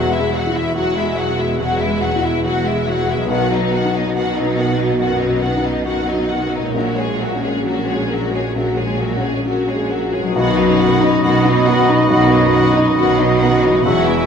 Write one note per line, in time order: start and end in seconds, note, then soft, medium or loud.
0.00 3.25 E1 medium
0.00 1.55 E2 medium
0.00 3.25 E2 medium
0.00 3.23 E3 medium
0.00 0.10 F#3 medium
0.00 0.30 F#3 soft
0.00 3.25 G#3 medium
0.00 3.28 E4 soft
0.00 0.11 F#4 medium
0.00 3.24 F#4 soft
0.00 0.11 F#5 medium
0.11 0.33 G#3 medium
0.11 0.34 E4 medium
0.11 0.34 E5 medium
0.18 0.64 G#3 soft
0.33 0.55 F#3 medium
0.33 0.55 F#4 medium
0.33 0.56 F#5 medium
0.47 0.92 E4 soft
0.54 0.76 G#3 medium
0.54 0.76 E4 medium
0.54 0.76 E5 medium
0.75 0.95 F#3 medium
0.75 1.20 F#4 medium
0.75 0.96 F#4 medium
0.75 0.96 F#5 medium
0.96 1.17 G#3 medium
0.96 1.18 E4 medium
0.96 1.18 E5 medium
1.03 1.48 G#4 medium
1.17 1.38 F#3 medium
1.17 1.38 F#4 medium
1.17 1.39 F#5 medium
1.30 1.76 F#4 soft
1.38 1.59 G#3 medium
1.38 1.60 E4 medium
1.38 1.60 E5 soft
1.59 2.04 B2 soft
1.59 1.79 F#3 medium
1.59 1.80 F#4 medium
1.59 1.79 F#5 medium
1.80 2.02 G#3 medium
1.80 2.02 E4 medium
1.80 2.01 E5 soft
1.87 2.33 G#3 soft
2.02 2.23 F#3 medium
2.02 2.23 F#4 medium
2.02 2.23 F#5 medium
2.16 2.61 E4 soft
2.22 2.44 G#3 medium
2.22 2.45 E4 medium
2.22 2.44 E5 soft
2.44 2.64 F#3 medium
2.44 2.90 F#4 medium
2.44 2.65 F#4 medium
2.44 2.64 F#5 medium
2.65 2.86 G#3 medium
2.65 2.88 E4 soft
2.65 2.87 E5 soft
2.72 3.18 G#4 soft
2.88 3.09 F#3 medium
2.88 3.09 F#4 medium
2.88 3.09 F#5 medium
3.01 3.29 F#4 medium
3.08 6.70 B2 medium
3.08 3.29 G#3 medium
3.08 3.31 E4 soft
3.08 3.31 E5 medium
3.16 7.06 F#3 soft
3.21 6.74 D#4 soft
3.25 4.94 B1 medium
3.25 6.75 B1 medium
3.25 6.74 B2 medium
3.25 6.69 F#4 soft
3.30 3.50 D#3 medium
3.30 3.50 F#4 medium
3.30 3.50 F#5 medium
3.51 3.72 F#3 medium
3.51 3.72 D#4 medium
3.51 3.73 D#5 medium
3.57 4.02 F#3 medium
3.72 3.93 D#3 soft
3.72 3.93 F#4 medium
3.72 3.94 F#5 medium
3.85 4.30 D#4 soft
3.94 4.15 F#3 soft
3.94 4.15 D#4 soft
3.94 4.14 D#5 medium
4.13 4.34 D#3 soft
4.13 4.58 F#4 medium
4.17 4.35 F#4 soft
4.17 4.35 F#5 soft
4.35 4.56 F#3 medium
4.35 4.57 D#4 soft
4.35 4.57 D#5 soft
4.42 4.87 D#4 soft
4.58 4.78 D#3 medium
4.58 4.79 F#4 medium
4.58 4.79 F#5 medium
4.70 5.16 F#4 soft
4.79 5.00 F#3 soft
4.79 5.00 D#4 soft
4.79 5.00 D#5 soft
4.98 5.45 F#2 soft
4.98 5.19 D#3 soft
4.98 5.20 F#4 medium
4.98 5.20 F#5 soft
5.21 5.43 F#3 medium
5.21 5.43 D#4 soft
5.21 5.42 D#5 soft
5.28 5.74 F#3 soft
5.42 5.64 D#3 soft
5.42 5.65 F#4 soft
5.42 5.64 F#5 soft
5.57 6.03 D#4 soft
5.64 5.86 F#3 soft
5.64 5.87 D#4 soft
5.64 5.86 D#5 soft
5.85 6.06 D#3 soft
5.85 6.32 F#4 medium
5.85 6.07 F#4 medium
5.85 6.06 F#5 soft
6.07 6.29 F#3 soft
6.07 6.31 D#4 soft
6.07 6.29 D#5 soft
6.14 6.62 D#4 soft
6.28 6.52 D#3 soft
6.28 6.51 F#5 soft
6.32 6.53 F#4 soft
6.44 6.75 F#4 soft
6.51 6.73 F#3 soft
6.51 6.75 D#5 soft
6.56 10.30 A#2 soft
6.56 6.77 D#4 soft
6.61 10.32 G#3 soft
6.66 10.35 C#4 soft
6.70 8.52 A#1 soft
6.70 6.96 F#3 medium
6.70 10.31 F#4 soft
6.70 6.95 A#4 medium
6.75 10.11 A#1 medium
6.75 10.12 A#2 medium
6.75 6.98 F#4 soft
6.96 7.20 G#3 soft
6.96 7.19 C#5 soft
7.00 7.22 G#4 soft
7.05 7.53 G#3 soft
7.20 7.43 F#3 soft
7.20 7.44 F#4 soft
7.20 7.43 A#4 soft
7.35 7.83 C#4 soft
7.42 7.66 G#3 soft
7.42 7.67 G#4 soft
7.42 7.65 C#5 soft
7.64 7.86 F#3 soft
7.64 8.13 F#4 soft
7.64 7.87 F#4 soft
7.64 7.86 A#4 soft
7.86 8.10 G#3 soft
7.86 8.10 C#5 soft
7.91 8.12 G#4 soft
7.91 8.43 G#4 soft
8.09 8.33 F#3 soft
8.09 8.34 F#4 soft
8.09 8.32 A#4 soft
8.25 8.74 F#4 soft
8.32 8.56 G#3 soft
8.32 8.57 G#4 soft
8.32 8.56 C#5 soft
8.55 10.31 A#1 soft
8.55 8.77 F#3 soft
8.55 8.78 F#4 soft
8.55 8.77 A#4 soft
8.78 9.01 G#3 soft
8.78 9.02 G#4 soft
8.78 9.01 C#5 soft
8.86 9.34 G#3 soft
8.99 9.24 F#3 soft
8.99 9.24 F#4 soft
8.99 9.23 A#4 soft
9.17 9.64 C#4 soft
9.22 9.47 G#3 soft
9.22 9.45 C#5 soft
9.26 9.47 G#4 soft
9.44 9.94 F#4 soft
9.44 9.68 F#4 soft
9.44 9.66 A#4 soft
9.48 9.68 F#3 soft
9.68 9.92 G#3 soft
9.68 9.92 G#4 soft
9.68 9.91 C#5 soft
9.76 10.24 G#4 soft
9.90 10.14 F#3 soft
9.90 10.14 F#4 soft
9.90 10.13 A#4 soft
10.06 10.36 F#4 soft
10.14 10.36 G#3 soft
10.14 10.36 G#4 soft
10.14 10.36 C#5 soft
10.18 13.80 B2 medium
10.23 14.13 F#3 medium
10.27 13.85 D#4 soft
10.32 11.13 B2 medium
10.32 13.79 F#4 medium
10.36 12.07 B1 medium
10.36 11.13 B1 medium
10.36 10.57 D#3 medium
10.36 13.82 F#3 medium
10.36 13.82 D#4 medium
10.36 13.81 F#4 medium
10.36 10.56 F#4 medium
10.36 13.82 D#5 medium
10.36 10.56 F#5 medium
10.36 13.87 B5 medium
10.58 10.93 F#2 medium
10.58 10.80 F#3 medium
10.58 10.80 D#4 medium
10.58 10.80 D#5 medium
10.79 11.02 D#3 medium
10.79 11.15 F#3 soft
10.79 11.02 F#4 medium
10.79 11.01 F#5 medium
11.01 11.24 F#3 medium
11.01 11.23 D#4 medium
11.01 11.36 D#4 medium
11.01 11.23 D#5 medium
11.22 12.01 B1 medium
11.22 12.00 B2 medium
11.22 11.44 D#3 medium
11.22 11.58 F#4 medium
11.22 11.44 F#4 medium
11.22 11.44 F#5 medium
11.45 11.67 F#3 medium
11.45 11.80 D#4 medium
11.45 11.68 D#4 medium
11.45 11.67 D#5 medium
11.66 11.89 D#3 medium
11.66 12.02 F#4 medium
11.66 11.89 F#4 medium
11.66 11.88 F#5 medium
11.88 12.11 F#3 medium
11.88 12.10 D#4 medium
11.88 12.24 D#4 soft
11.88 12.10 D#5 medium
12.09 13.81 B1 medium
12.09 12.87 B1 medium
12.09 12.87 B2 medium
12.09 12.31 D#3 medium
12.09 12.31 F#4 medium
12.09 12.30 F#5 medium
12.31 12.67 F#2 medium
12.31 12.54 F#3 medium
12.31 12.54 D#4 medium
12.31 12.53 D#5 medium
12.53 12.76 D#3 medium
12.53 12.89 F#3 soft
12.53 12.76 F#4 medium
12.53 12.75 F#5 medium
12.75 12.98 F#3 medium
12.75 12.97 D#4 medium
12.75 13.11 D#4 soft
12.75 12.97 D#5 medium
12.97 13.75 B1 medium
12.97 13.74 B2 medium
12.97 13.17 D#3 medium
12.97 13.18 F#4 medium
12.97 13.33 F#4 medium
12.97 13.17 F#5 medium
13.18 13.41 F#3 medium
13.18 13.41 D#4 medium
13.18 13.55 D#4 medium
13.18 13.41 D#5 medium
13.39 13.63 D#3 medium
13.39 13.63 F#4 medium
13.39 13.77 F#4 medium
13.39 13.62 F#5 medium
13.63 13.83 F#3 medium
13.63 13.86 D#4 soft
13.63 13.86 D#4 medium
13.63 13.85 D#5 medium
13.67 14.26 E3 medium
13.71 14.26 G#3 medium
13.76 14.26 E4 medium
13.80 14.26 E2 medium
13.80 14.26 F#4 soft
13.80 14.05 F#5 medium
13.85 14.26 E1 medium
13.85 14.26 E2 medium
13.85 14.05 F#3 medium
13.85 14.26 F#3 medium
13.85 14.26 E4 medium
13.85 14.26 F#4 medium
13.85 14.06 F#4 medium
13.85 14.26 E5 medium
13.85 14.26 G#5 medium
14.05 14.26 B2 medium
14.05 14.26 G#3 medium
14.05 14.26 E4 medium
14.05 14.26 E5 medium